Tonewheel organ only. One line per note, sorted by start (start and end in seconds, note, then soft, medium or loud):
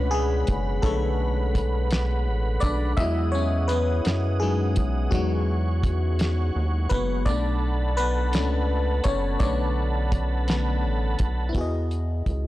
0.00 2.93 B4 medium
0.00 2.93 F#5 medium
0.00 2.93 B5 medium
2.98 7.23 G#4 medium
2.98 11.51 F#5 medium
2.98 5.10 D#6 medium
5.11 7.24 C#6 medium
7.26 11.51 A4 medium
7.26 11.51 A5 medium
7.26 11.51 B5 medium